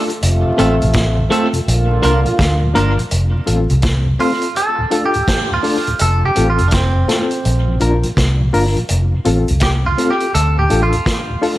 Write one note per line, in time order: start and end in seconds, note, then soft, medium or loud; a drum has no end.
0.00 0.10 A4 loud
0.08 muted clean electric guitar stroke soft
0.08 closed hi-hat soft
0.23 0.43 F1 loud
0.23 1.29 C3 medium
0.23 1.29 A3 medium
0.23 1.29 F4 medium
0.23 closed hi-hat loud
0.45 0.53 F2 medium
0.45 0.53 C3 medium
0.57 0.79 A1 medium
0.57 0.74 A3 medium
0.57 0.71 A3 medium
0.57 0.82 C4 medium
0.57 0.71 C4 medium
0.57 0.75 C4 medium
0.57 0.82 F4 medium
0.57 0.71 F4 medium
0.57 0.75 F4 medium
0.57 0.82 A4 loud
0.57 0.75 A4 medium
0.57 closed hi-hat medium
0.80 1.26 A1 medium
0.80 0.88 F2 medium
0.80 0.88 C3 medium
0.80 closed hi-hat soft
0.93 kick loud
0.93 snare loud
0.93 closed hi-hat medium
1.16 1.24 F2 medium
1.16 1.24 C3 medium
1.29 1.43 A3 medium
1.29 1.46 A3 medium
1.29 1.54 C4 medium
1.29 1.43 C4 medium
1.29 1.47 C4 medium
1.29 1.52 F4 medium
1.29 1.43 F4 medium
1.29 1.47 F4 medium
1.29 1.52 A4 medium
1.29 1.47 A4 loud
1.29 closed hi-hat medium
1.53 1.61 F2 medium
1.53 1.61 C3 medium
1.53 1.58 F4 soft
1.53 1.58 A4 soft
1.53 closed hi-hat medium
1.67 2.00 A#1 loud
1.67 2.73 D3 medium
1.67 2.73 A#3 medium
1.67 2.73 F4 medium
1.67 closed hi-hat medium
1.89 1.97 A#2 medium
1.89 1.97 F3 medium
2.02 2.24 C2 medium
2.02 2.16 A#3 medium
2.02 2.19 A#3 medium
2.02 2.26 D4 medium
2.02 2.16 D4 medium
2.02 2.19 D4 medium
2.02 2.27 F4 medium
2.02 2.16 F4 medium
2.02 2.20 F4 medium
2.02 2.27 A#4 medium
2.02 2.20 A#4 medium
2.02 closed hi-hat medium
2.25 2.33 A#2 medium
2.25 2.33 F3 medium
2.25 closed hi-hat soft
2.39 2.72 D2 loud
2.39 kick loud
2.39 snare medium
2.39 closed hi-hat medium
2.62 2.69 A#2 medium
2.62 2.69 F3 medium
2.74 2.96 G1 medium
2.74 2.88 A#3 medium
2.74 2.91 A#3 medium
2.74 2.99 D4 loud
2.74 2.88 D4 medium
2.74 2.92 D4 medium
2.74 2.99 F4 medium
2.74 2.88 F4 medium
2.74 2.92 F4 medium
2.74 2.99 A#4 loud
2.74 2.92 A#4 medium
2.74 closed hi-hat medium
2.97 3.05 A#2 medium
2.97 3.05 F3 medium
2.97 muted clean electric guitar stroke soft
2.97 closed hi-hat soft
3.11 3.32 F1 loud
3.11 closed hi-hat loud
3.34 3.41 F2 medium
3.34 3.42 C3 medium
3.46 3.68 A1 medium
3.46 3.60 A3 medium
3.46 3.71 C4 medium
3.46 3.60 C4 medium
3.46 3.71 F4 medium
3.46 3.60 F4 medium
3.46 3.71 A4 medium
3.46 closed hi-hat medium
3.70 4.15 C2 medium
3.70 3.78 F2 medium
3.70 3.77 C3 medium
3.70 closed hi-hat soft
3.82 kick loud
3.82 snare loud
3.82 closed hi-hat medium
4.06 4.14 F2 soft
4.06 4.14 C3 medium
4.19 4.33 A3 medium
4.19 4.44 C4 medium
4.19 4.33 C4 medium
4.19 4.41 F4 medium
4.19 4.33 F4 medium
4.19 4.56 F4 medium
4.19 4.41 A4 medium
4.19 open hi-hat medium
4.42 4.47 F4 soft
4.42 4.48 A4 soft
4.42 closed hi-hat medium
4.56 5.05 A4 loud
4.56 closed hi-hat medium
4.78 4.86 D2 medium
4.78 4.86 A2 medium
4.91 5.05 A3 medium
4.91 5.16 D4 medium
4.91 5.05 D4 medium
4.91 5.16 F4 medium
4.91 5.05 F4 medium
4.91 5.16 A4 loud
4.91 closed hi-hat medium
5.05 5.50 G4 loud
5.14 5.23 D2 medium
5.14 5.23 A2 medium
5.14 closed hi-hat soft
5.28 kick medium
5.28 snare medium
5.28 closed hi-hat medium
5.51 5.58 D2 medium
5.51 5.59 A2 medium
5.51 6.01 F4 medium
5.63 5.77 A3 medium
5.63 5.88 D4 loud
5.63 5.78 D4 medium
5.63 5.88 F4 medium
5.63 5.78 F4 medium
5.63 5.88 A4 loud
5.63 open hi-hat medium
5.87 5.95 D2 medium
5.87 5.95 A2 medium
5.87 closed hi-hat soft
5.99 6.21 F1 loud
5.99 6.23 A4 medium
5.99 closed hi-hat loud
6.24 6.31 F2 medium
6.24 6.31 C3 medium
6.24 6.47 G4 loud
6.35 6.57 A1 medium
6.35 6.49 A3 medium
6.35 6.60 C4 medium
6.35 6.50 C4 medium
6.35 6.61 F4 medium
6.35 6.50 F4 medium
6.35 6.61 A4 medium
6.35 closed hi-hat medium
6.50 6.67 F4 medium
6.58 7.05 F1 medium
6.58 6.67 F2 medium
6.58 6.67 C3 medium
6.58 closed hi-hat soft
6.68 6.73 D4 medium
6.68 closed hi-hat medium
6.72 7.78 C4 medium
6.72 kick loud
6.72 snare medium
6.96 7.03 F2 medium
6.96 7.03 C3 medium
7.08 7.22 A3 medium
7.08 7.33 C4 medium
7.08 7.22 C4 medium
7.08 7.30 F4 medium
7.08 7.22 F4 medium
7.08 7.31 A4 loud
7.08 snare medium
7.08 closed hi-hat medium
7.31 7.37 F4 soft
7.31 7.37 A4 soft
7.31 closed hi-hat medium
7.45 7.78 A#1 loud
7.45 closed hi-hat medium
7.68 7.76 A#2 medium
7.68 7.76 F3 medium
7.80 8.02 A#1 medium
7.80 7.94 A#3 medium
7.80 8.05 D4 medium
7.80 7.94 D4 medium
7.80 8.05 F4 medium
7.80 7.94 F4 medium
7.80 8.06 A#4 loud
7.80 closed hi-hat medium
8.03 8.12 A#2 medium
8.03 8.11 F3 medium
8.03 closed hi-hat soft
8.17 8.50 C2 medium
8.17 kick medium
8.17 snare medium
8.17 closed hi-hat medium
8.40 8.48 A#2 medium
8.40 8.48 F3 medium
8.53 8.74 G1 medium
8.53 8.66 A#3 medium
8.53 8.77 D4 medium
8.53 8.66 D4 medium
8.53 8.66 F4 medium
8.53 8.78 F4 medium
8.53 8.78 A#4 loud
8.53 open hi-hat medium
8.76 8.84 A#2 medium
8.76 8.84 F3 medium
8.76 closed hi-hat soft
8.89 9.11 F1 loud
8.89 closed hi-hat loud
9.12 9.20 F2 medium
9.12 9.20 C3 medium
9.25 9.46 A1 medium
9.25 9.39 A3 medium
9.25 9.50 C4 medium
9.25 9.39 C4 medium
9.25 9.50 F4 medium
9.25 9.39 F4 medium
9.25 9.50 A4 medium
9.25 closed hi-hat medium
9.48 9.94 C2 medium
9.48 9.56 F2 medium
9.48 9.56 C3 medium
9.48 closed hi-hat soft
9.60 9.69 G4 medium
9.60 kick loud
9.60 snare loud
9.60 closed hi-hat medium
9.85 9.93 F2 medium
9.85 9.93 C3 medium
9.85 10.10 F4 medium
9.97 10.11 A3 medium
9.97 10.22 C4 medium
9.97 10.11 C4 medium
9.97 10.19 F4 medium
9.97 10.11 F4 medium
9.97 10.19 A4 medium
9.97 closed hi-hat medium
10.10 10.34 G4 medium
10.20 10.26 F4 soft
10.20 10.26 A4 soft
10.20 closed hi-hat soft
10.34 10.67 D2 loud
10.34 10.57 A4 medium
10.34 closed hi-hat medium
10.57 10.65 D2 medium
10.57 10.65 A2 medium
10.57 10.82 G4 medium
10.70 10.91 A1 medium
10.70 10.83 A3 medium
10.70 10.94 D4 medium
10.70 10.84 D4 medium
10.70 10.95 F4 medium
10.70 10.84 F4 medium
10.70 10.95 A4 medium
10.70 closed hi-hat medium
10.83 11.51 F4 medium
10.92 11.01 D2 medium
10.92 11.01 A2 medium
10.92 closed hi-hat soft
11.06 kick medium
11.06 snare loud
11.06 closed hi-hat medium
11.30 11.37 D2 medium
11.30 11.37 A2 medium
11.42 11.56 A3 medium
11.42 11.58 D4 medium
11.42 11.56 D4 medium
11.42 11.58 F4 medium
11.42 11.56 F4 medium
11.42 11.58 A4 loud
11.42 open hi-hat medium